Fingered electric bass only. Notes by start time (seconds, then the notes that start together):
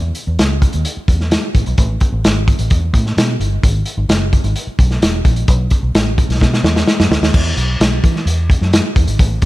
Already playing: E2
0.27 E2
0.39 C#2
0.74 D#2
0.97 muted fingered electric bass stroke
1.08 E2
1.55 A1
1.67 B1
1.78 A1
2.12 A1
2.25 G#1
2.59 A1
2.71 E2
2.93 A2
3.17 B2
3.40 G1
3.63 G#1
3.97 G#1
4.09 F#1
4.44 G#1
4.67 muted fingered electric bass stroke
4.79 B1
5.02 E1
5.25 A#1
5.48 B1
5.83 B1
5.95 A1
6.29 B1
6.41 B2
6.63 E2
7.00 F#2
7.11 D2
7.22 D#2
7.34 E2
7.56 B1
7.80 B1
8.04 E3
8.26 E2
8.61 F#2
8.96 E2
9.07 G#1
9.19 A1
9.42 E2